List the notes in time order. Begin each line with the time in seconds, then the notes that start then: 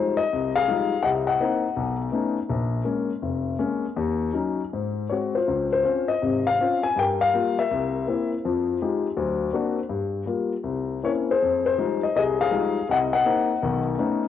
Already playing: F3 G3 G#3 D#4 G#4 C5
0.17 D#5
0.33 C2
0.56 G#4 F5
0.68 F3 G3 G#3 D#4
1.03 C2 C3 D#5 F#5
1.27 D#5 F#5
1.40 A#3 C4 D#4
1.77 B1
2.12 A3 B3 C#4 D#4
2.50 A#1
2.85 G#3 A#3 C#4
3.22 F1
3.59 G#3 A#3 C#4
3.96 D#2
4.33 F#3 C#4 D#4
4.73 G#2
5.09 G#3 C4 F#4 C#5
5.35 F4 C5
5.47 C#2
5.73 C5
5.84 C4 C#4 F4
6.09 D#5
6.22 G#1 C3
6.47 F5
6.61 C4 C#4 F4
6.83 G#5
6.96 G2 G5
7.01 A#4
7.21 F5
7.34 G3 A#3 F4
7.59 A#4 E5
7.71 C2
8.07 A#3 C4 E4
8.45 F2 F3
8.82 G#3 D#4 F4 G4
9.17 D2 F#3
9.53 A#3 C4 D4 F#4
9.89 G2
10.26 G3 A#3 F4
10.63 C2
11.03 A#3 C4 C#4 E4 C#5
11.31 G#4 C5
11.42 F2
11.66 C5
11.78 F3 G3 G#3 D#4
12.03 D#5
12.15 C2 C3 G#4 D#5
12.41 G#4 F5
12.51 F3 G3 G#3 D#4
12.89 C2 D#5 F#5
13.13 D#5 F#5
13.25 A#3 C4 D#4
13.62 B1 D#3
13.98 A3 B3 C#4 D#4